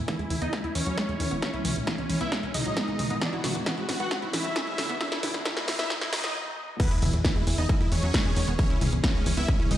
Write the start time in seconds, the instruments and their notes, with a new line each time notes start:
Already playing: ambient pad B2 E3 G#3 E4, riser
0.08 synth pluck E3, supersaw synth E4, kick, snare, closed hi-hat
0.19 analog synth bass E2, synth pluck G#3, supersaw synth E4, closed hi-hat
0.30 analog synth bass E2, synth pluck E3, supersaw synth E4, open hi-hat
0.42 analog synth bass E2, synth pluck B3, supersaw synth D#4 D#5, closed hi-hat
0.53 synth pluck G#3, supersaw synth E4, kick, snare, closed hi-hat
0.64 analog synth bass E2, supersaw synth E4, synth pluck E4, closed hi-hat
0.75 analog synth bass E2, synth pluck E3, supersaw synth C#4 C#5, open hi-hat
0.86 analog synth bass E2, synth pluck F#3, closed hi-hat
0.98 synth pluck G#3, kick, snare, closed hi-hat
1.09 analog synth bass E2, synth pluck G#3, closed hi-hat
1.20 analog synth bass E2, synth pluck D#3, open hi-hat
1.31 analog synth bass E1, synth pluck B3, closed hi-hat
1.42 ambient pad C#3 D#4, synth pluck E3, supersaw synth C#4 C#5, kick, snare, closed hi-hat
1.54 analog synth bass C#2, supersaw synth C#4, synth pluck E4, closed hi-hat
1.65 analog synth bass C#2, synth pluck E3, supersaw synth C#4, open hi-hat, mid tom
1.76 analog synth bass C#2, synth pluck E2, closed hi-hat
1.87 synth pluck E3, supersaw synth C#4, kick, snare, closed hi-hat
1.98 analog synth bass C#2, synth pluck G#3, supersaw synth C#4, closed hi-hat
2.10 analog synth bass C#2, synth pluck E3, supersaw synth C#4, open hi-hat
2.21 analog synth bass C#2, synth pluck B3, supersaw synth E4 E5, closed hi-hat
2.32 synth pluck G#3, supersaw synth C#4, kick, snare, closed hi-hat
2.43 analog synth bass C#2, supersaw synth C#4, synth pluck E4, closed hi-hat
2.54 analog synth bass C#2, synth pluck E3, supersaw synth D#4 D#5, open hi-hat, mid tom
2.66 analog synth bass C#2, synth pluck F#3, closed hi-hat
2.77 synth pluck G#3, kick, snare, closed hi-hat
2.88 analog synth bass C#2, synth pluck G#3, closed hi-hat
2.99 analog synth bass C#2, synth pluck D#3, open hi-hat, mid tom
3.10 analog synth bass G#1, synth pluck B3, closed hi-hat
3.21 ambient pad D3 A3 B3 F#4, synth pluck E3, supersaw synth D4 D5, kick, snare, closed hi-hat
3.33 analog synth bass B1, synth pluck E4, supersaw synth F#4, closed hi-hat
3.44 analog synth bass B1, synth pluck E3, supersaw synth F#4, snare, open hi-hat, mid tom
3.55 analog synth bass B1, synth pluck E2, closed hi-hat
3.66 synth pluck E3, supersaw synth F#4, kick, snare, closed hi-hat
3.78 analog synth bass B1, synth pluck G#3, supersaw synth F#4, closed hi-hat
3.89 analog synth bass B1, synth pluck E3, supersaw synth F#4, snare, open hi-hat
4.00 analog synth bass B1, synth pluck B3, supersaw synth F#4 F#5, closed hi-hat
4.11 synth pluck G#3, supersaw synth F#4, kick, snare, closed hi-hat
4.22 analog synth bass B1, synth pluck E4, supersaw synth F#4, closed hi-hat
4.33 analog synth bass B1, synth pluck E3, supersaw synth E4 E5, snare, open hi-hat
4.45 analog synth bass B1, synth pluck F#3, closed hi-hat
4.56 synth pluck G#3, kick, snare, closed hi-hat
4.67 analog synth bass B1, synth pluck G#3, closed hi-hat
4.78 analog synth bass B1, synth pluck D3, snare, open hi-hat
4.89 analog synth bass F#1, synth pluck B3, closed hi-hat
5.01 synth pluck E3, supersaw synth E4 E5, kick, snare, closed hi-hat
5.12 analog synth bass E2, synth pluck E4, supersaw synth E4, snare, closed hi-hat
5.23 analog synth bass E2, synth pluck E3, supersaw synth E4, snare, open hi-hat, mid tom
5.34 analog synth bass E2, synth pluck E2, snare, closed hi-hat
5.45 synth pluck E3, supersaw synth E4, kick, snare, closed hi-hat
5.57 analog synth bass E2, synth pluck G#3, supersaw synth E4, snare, closed hi-hat
5.68 analog synth bass E2, synth pluck E3, supersaw synth E4, snare, open hi-hat
5.79 analog synth bass E2, synth pluck B3, supersaw synth E4 E5, snare, closed hi-hat
5.90 synth pluck G#3, supersaw synth E4, kick, snare, closed hi-hat
6.01 analog synth bass E2, supersaw synth E4, synth pluck E4, snare, closed hi-hat
6.12 analog synth bass E2, synth pluck E3, supersaw synth D#4 D#5, snare, open hi-hat, mid tom
6.24 analog synth bass E2, synth pluck F#3, snare, closed hi-hat
6.80 synth pluck E3, ambient pad E3 G#3 B3 G#4, supersaw synth B3 B4, kick, closed hi-hat, crash, sub drop
6.91 analog synth bass E2, supersaw synth E4, synth pluck E4, closed hi-hat
7.02 analog synth bass E2, synth pluck E3, supersaw synth E4, open hi-hat, mid tom
7.13 analog synth bass E2, synth pluck E2, closed hi-hat
7.25 synth pluck E3, supersaw synth E4, kick, snare, closed hi-hat
7.36 analog synth bass E2, synth pluck G#3, supersaw synth E4, closed hi-hat
7.47 analog synth bass E2, synth pluck E3, supersaw synth E4, open hi-hat
7.58 analog synth bass E2, synth pluck B3, supersaw synth D#4 D#5, closed hi-hat
7.69 synth pluck G#3, supersaw synth E4, kick, closed hi-hat
7.81 analog synth bass E2, synth pluck E4, supersaw synth E4, closed hi-hat
7.92 analog synth bass E2, synth pluck E3, supersaw synth C#4 C#5, open hi-hat
8.03 analog synth bass E2, synth pluck F#3, closed hi-hat
8.14 synth pluck G#3, kick, snare, closed hi-hat
8.25 analog synth bass E2, synth pluck G#3, closed hi-hat
8.37 analog synth bass E2, synth pluck D#3, open hi-hat
8.48 analog synth bass E1, synth pluck B3, closed hi-hat
8.59 ambient pad E3 C#4 D#4, synth pluck E3, supersaw synth C#4 C#5, kick, closed hi-hat
8.70 analog synth bass C#2, supersaw synth C#4, synth pluck E4, closed hi-hat
8.81 analog synth bass C#2, synth pluck E3, supersaw synth C#4, open hi-hat, mid tom
8.92 analog synth bass C#2, synth pluck E2, closed hi-hat
9.04 synth pluck E3, supersaw synth C#4, kick, snare, closed hi-hat
9.15 analog synth bass C#2, synth pluck G#3, supersaw synth C#4, closed hi-hat
9.26 analog synth bass C#2, synth pluck E3, supersaw synth C#4, open hi-hat
9.37 analog synth bass C#2, synth pluck B3, supersaw synth E4 E5, closed hi-hat
9.48 synth pluck G#3, supersaw synth C#4, kick, closed hi-hat
9.60 analog synth bass C#2, supersaw synth C#4, synth pluck E4, closed hi-hat
9.71 analog synth bass C#2, synth pluck E3, supersaw synth D#4 D#5, open hi-hat, mid tom